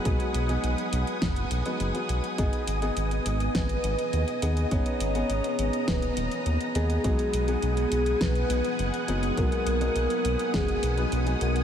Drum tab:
HH |xxxxxxxxxxxxxxxx|xxxxxxxxxxxxxxxx|xxxxxxxxxxxxxxxx|xxxxxxxxxxxxxxxx|
SD |--------o-------|--------o-------|--------o-------|--------o-------|
BD |o-------o-------|o-------o-------|o-------o-------|o-------o-------|

HH |xxxxxxxxxxxxxxxx|
SD |--------o-------|
BD |o-------o-------|